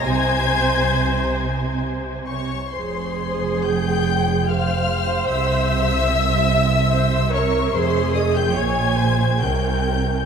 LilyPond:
<<
  \new Staff \with { instrumentName = "Violin section" } { \time 3/4 \key f \minor \tempo 4 = 72 aes'''2 r8 des'''8 | c'''4 g'''4 f'''4 | e'''2~ e'''8 des'''8 | c'''8 ees'''16 g'''16 aes'''4 g'''4 | }
  \new Staff \with { instrumentName = "Violin section" } { \time 3/4 \key f \minor aes''2 r8 des''8 | c''4 g''4 f''4 | e''2~ e''8 des''8 | c''8 ees''16 g''16 aes''4 g''4 | }
  \new Staff \with { instrumentName = "Viola section" } { \time 3/4 \key f \minor c''2~ c''8 r8 | aes'2 c''4~ | c''4 e''4 c''8 bes'8 | aes'4 des''8 c''8 bes'4 | }
  \new Staff \with { instrumentName = "Cello section" } { \clef bass \time 3/4 \key f \minor c2~ c8. r16 | f,2. | c2. | f,4 bes,4 c4 | }
  \new Staff \with { instrumentName = "Double bass section" } { \clef bass \time 3/4 \key f \minor c,2~ c,8. r16 | f,,2. | c,2. | f,,4 bes,,4 c,4 | }
>>